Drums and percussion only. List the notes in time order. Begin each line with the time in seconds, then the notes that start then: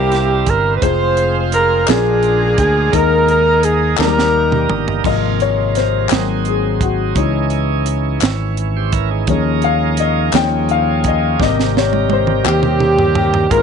0.12 snare, closed hi-hat
0.47 kick, closed hi-hat
0.82 kick, closed hi-hat
1.17 closed hi-hat
1.52 closed hi-hat
1.87 snare, clap, closed hi-hat
2.23 closed hi-hat
2.58 kick, closed hi-hat
2.93 kick, closed hi-hat
3.28 closed hi-hat
3.63 closed hi-hat
3.97 snare, clap
4.19 snare
4.52 mid tom
4.69 floor tom
4.88 floor tom
5.04 kick, crash
5.40 closed hi-hat
5.75 snare, closed hi-hat
6.09 snare, clap, closed hi-hat
6.45 closed hi-hat
6.81 kick, closed hi-hat
7.16 kick, closed hi-hat
7.50 closed hi-hat
7.86 closed hi-hat
8.20 snare, clap, closed hi-hat
8.57 closed hi-hat
8.92 kick, closed hi-hat
9.27 kick, closed hi-hat
9.62 closed hi-hat
9.97 closed hi-hat
10.32 snare, clap, closed hi-hat
10.69 closed hi-hat
11.04 kick, closed hi-hat
11.40 kick, snare
11.60 snare
11.77 snare
11.93 high tom
12.10 high tom
12.27 mid tom
12.45 clap, mid tom
12.63 mid tom
12.80 mid tom
12.98 floor tom
13.15 floor tom
13.34 floor tom
13.51 kick, closed hi-hat